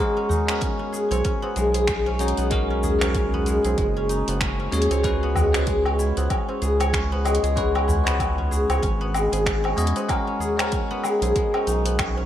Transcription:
Already playing: G#3 B3 C#4 E4 G#4 C#5
0.00 C#4 F#4 A#4
0.17 C#4
0.29 D#4, tabla ge, shaker
0.47 G#3 B3 C#4 F#4 A#4, finger snap, closed hi-hat, tabla tin, shaker
0.61 C#4, kick, closed hi-hat, shaker
0.79 C#4
0.92 G#4, shaker
1.11 B1 C#5, closed hi-hat, tabla na, shaker
1.24 C#4, kick, closed hi-hat, shaker
1.42 B3, tabla na
1.56 B1 G#3, closed hi-hat, shaker
1.74 G#4, closed hi-hat, tabla tin, shaker
1.87 G#3, finger snap, kick, closed hi-hat, shaker
2.06 C#4, tabla tin
2.19 G#3 C#4 D#4 F#4 C#5, closed hi-hat, shaker
2.28 closed hi-hat
2.37 B1 B3, closed hi-hat, shaker
2.50 G#3 C#4 F#4 A#4, kick, closed hi-hat, shaker
2.70 C#4
2.83 G#4, tabla ge, shaker
2.99 G#3 C#4 F#4 A#4 C#5, finger snap, closed hi-hat, tabla tin, shaker
3.15 C#4, kick, closed hi-hat, shaker
3.33 B3, tabla ge
3.46 G#3, closed hi-hat, shaker
3.65 B1 G#4, closed hi-hat, tabla na, shaker
3.78 F#1 G#3, kick, closed hi-hat, shaker
3.97 C#4
4.09 D#4, closed hi-hat, shaker
4.28 F#1 B3, closed hi-hat, tabla tin, shaker
4.41 F#1 C#4, finger snap, kick, closed hi-hat, tabla tin, shaker
4.59 C#4, tabla tin
4.71 D#2 G#3 C#4 F#4 G#4 C#5, closed hi-hat, shaker
4.82 closed hi-hat
4.91 C#2 C#5, closed hi-hat, tabla na, shaker
5.03 G#3 C#4 F#4 B4, kick, closed hi-hat, shaker
5.23 B3
5.35 G#3, tabla ge, low woodblock, shaker
5.53 G#3 C#4 F#4 G#4 B4, finger snap, closed hi-hat, tabla tin, shaker
5.67 G#3, kick, closed hi-hat, shaker
5.85 C#4, low woodblock
5.99 E4, shaker
6.17 C#2 B3, closed hi-hat, tabla na, shaker
6.30 C#4, kick, closed hi-hat, low woodblock, shaker
6.48 C#4, tabla na
6.62 C#2 G#4, closed hi-hat, shaker
6.80 C#5, closed hi-hat, tabla tin, low woodblock, shaker
6.93 C#4, finger snap, kick, closed hi-hat, shaker
7.12 B3, tabla tin
7.24 G#3 C#4 F#4 D#5, closed hi-hat, low woodblock, shaker
7.35 closed hi-hat
7.43 C#2 G#4, closed hi-hat, shaker
7.56 G#3 C#4 F#4 B4, kick, closed hi-hat, shaker
7.75 C#4, low woodblock
7.88 E4, tabla ge, shaker
8.04 G#3 B3 C#4 F#4, finger snap, closed hi-hat, tabla tin, shaker
8.08 B4
8.20 C#4, kick, closed hi-hat, low woodblock, shaker
8.38 C#4, tabla ge
8.51 G#4, shaker
8.69 C#2 C#5, closed hi-hat, tabla na, low woodblock, shaker
8.82 G#1 C#4, kick, closed hi-hat, shaker
9.01 B3
9.14 G#3, closed hi-hat, low woodblock, shaker
9.32 G#1 G#4, closed hi-hat, tabla tin, shaker
9.46 G#3, finger snap, kick, closed hi-hat, tabla tin, shaker
9.64 C#4, tabla tin, low woodblock
9.76 E2 G#3 C#4 E4 F#4 D#5, closed hi-hat, shaker
9.87 closed hi-hat
9.96 B3, closed hi-hat, tabla na, shaker
10.08 G#3 C#4 F#4 A#4, kick, closed hi-hat, low woodblock, shaker
10.27 C#4
10.39 G#4, tabla ge, shaker
10.57 G#3 C#4 F#4 C#5, finger snap, closed hi-hat, tabla tin, low woodblock, shaker
10.62 A#4
10.72 C#4, kick, closed hi-hat, shaker
10.91 B3
11.04 G#3, low woodblock, shaker
11.22 B1 G#4, closed hi-hat, tabla na, shaker
11.35 G#3, kick, closed hi-hat, shaker
11.54 C#4, tabla na, low woodblock
11.67 B1 D#4, closed hi-hat, shaker
11.85 B3, closed hi-hat, tabla tin, shaker
11.99 C#4, finger snap, kick, closed hi-hat, low woodblock, shaker
12.16 C#4, tabla tin

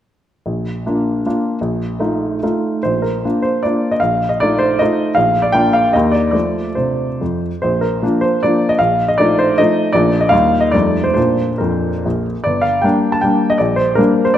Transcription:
0.46 A#1
0.86 A#3 D4 F4
1.26 A#3 D4 F4
1.61 A#1
2.00 A3 D#4 F4
2.43 A3 D#4 F4
2.83 A#1 C5
3.02 A#4
3.25 A#3 D4 F4
3.42 C5
3.63 A#3 D4 F4 D5
3.91 D#5
4.00 A#1 F5
4.29 D#5
4.40 A3 D#4 F4 D5
4.58 C5
4.79 A3 D#4 F4 D#5
5.15 A#1 F5
5.42 D5
5.52 A#3 D4 F4 G5
5.73 F5
5.93 D#2 A#3 G4 D#5
6.12 D5
6.31 F3 A3 F4 D5
6.75 C3 C5
7.21 F2
7.62 A#1 C5
7.81 A#4
8.03 F3 A#3 D4
8.21 C5
8.43 F3 A#3 D4 D5
8.69 D#5
8.79 A#1 F5
9.08 D#5
9.18 F3 A3 D#4 D5
9.39 C5
9.58 F3 A3 D#4 D#5
9.93 A#1 F3 A#3 D4 D5
10.21 D#5
10.29 D#2 G3 A#3 D#4 F5
10.61 D#5
10.71 F2 G3 A3 D#4 D5
11.04 C5
11.14 A#2 A#3 D4 C5
11.58 F2 A#4
12.05 A#1
12.44 G1 D5
12.62 F5
12.82 G3 A#3 D4 G5
13.12 A5
13.21 G3 A#3 D4 G5
13.50 D#5
13.58 A#1 D5
13.76 C5
13.95 G3 A#3 D4 A#4
14.25 C5
14.34 D5

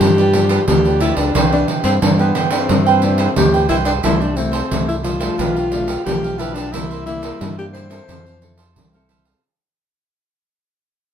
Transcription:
Already playing: F3 B3 D4 G4 B4 D5
0.01 G2, pandeiro
0.18 G4 B4 D5, pandeiro
0.33 F3 B3 D4 F4 G4 B4 D5, pandeiro
0.49 F4 G4 B4 D5, pandeiro
0.67 D2 D3 F3 B3 D4 G4, pandeiro
0.85 G4 B4 D5, pandeiro
1.00 E4 F4 G4 B4 D5, pandeiro
1.16 C#2 D4 G4 B4 D5, pandeiro
1.34 C2 C3 E3 B3 D4 E4 B4 C5 G5, pandeiro
1.52 E3 B3 D4, pandeiro
1.68 E4 B4 C5 G5, pandeiro
1.83 G2 C4 E4 B4 C5 G5, pandeiro
2.01 G2 E3 B3 D4, pandeiro
2.19 B3 B4 C5 G5, pandeiro
2.35 E4 B4 C5 G5, pandeiro
2.51 E3 C4 D4 B4 C5 G5, pandeiro
2.69 G2 C3, pandeiro
2.86 B4 C5 G5, pandeiro
3.02 E3 B3 D4 E4 B4 C5 G5, pandeiro
3.18 E4 B4 C5 G5, pandeiro
3.36 D2 G2 E3 B3 D4 G4, pandeiro
3.53 B4 C5 G5, pandeiro
3.68 C2 E4 B4 C5 G5, pandeiro
3.85 D4 B4 C5 G5, pandeiro
4.03 C2 C3 G3 A3 E4 A4 C5 E5, pandeiro
4.20 D4 A4 C5 E5, pandeiro
4.36 G3 A3 C4 E4, muted cavaquinho stroke, pandeiro
4.52 A4 C5 E5, pandeiro
4.71 C2 G2 G3 A3 E4, pandeiro
4.88 E4, pandeiro
5.03 E4 F4 A4 C5 E5, pandeiro
5.20 F3 A3 D4 A4 C5 E5, pandeiro
5.38 B1 B2 D4 G4 B4 F5, pandeiro
5.55 G4 B4 F5, pandeiro
5.71 F3 A3 D4, muted cavaquinho stroke, pandeiro
5.87 G4 B4 F5, pandeiro
6.05 B1 B2 F3 A3 D4 G4, pandeiro
6.23 G4 B4 F5, pandeiro
6.38 D4 E4 G4 B4 F5, pandeiro
6.54 D4 G4 B4 F5, pandeiro
6.72 C2 C3 G3 A#3 E4 A#4 C5 E5, pandeiro
6.90 A#4 C5 E5, pandeiro
7.06 G3 A#3 E4, muted cavaquinho stroke, pandeiro
7.22 A#4 C5 E5, pandeiro
7.41 G2, pandeiro
7.59 G3 A#3 E4 G4, pandeiro
7.73 E4 A#4 C5 E5, pandeiro
7.90 C4 E4 A4 A#4 C5 E5, pandeiro
8.08 F2 F3 E4 A4 C5 F5, pandeiro
8.25 A4 C5 F5, pandeiro
8.41 C4 E4 A4, muted cavaquinho stroke, pandeiro
8.57 A4 C5 F5, pandeiro
8.76 C2 C3, pandeiro
8.93 C4 E4 A4 C5 F5, pandeiro
9.09 E4 A4 C5 F5, pandeiro
9.25 A4 C5 F5, pandeiro

